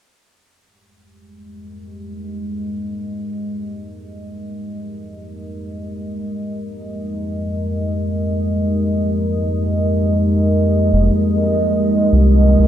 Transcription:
0.26 F2
0.54 G#3 G4
0.99 A#4
1.21 D#5
10.93 F1
12.12 C2
12.59 C2

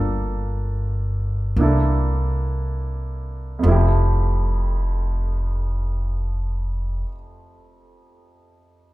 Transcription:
Already playing: G1 A#3 D4 F4 A4
1.56 C2 A#3 D4
1.61 E4 A4
3.59 F2 F3
3.63 F1 A3
3.68 E4 G4

